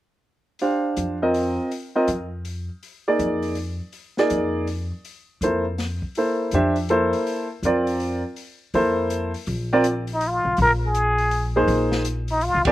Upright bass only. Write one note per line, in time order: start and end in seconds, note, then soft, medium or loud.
0.97 1.57 F2 medium
2.08 2.68 F2 medium
3.19 3.79 F2 medium
4.31 4.90 F2 medium
5.41 6.01 F2 medium
6.53 7.12 F2 medium
7.63 8.22 F2 medium
8.74 9.33 F2 medium
9.47 10.41 A#1 medium
10.45 10.57 B1 medium
10.58 11.64 A#1 medium
11.68 12.50 A#1 medium
12.54 12.66 C2 medium
12.67 12.72 A1 medium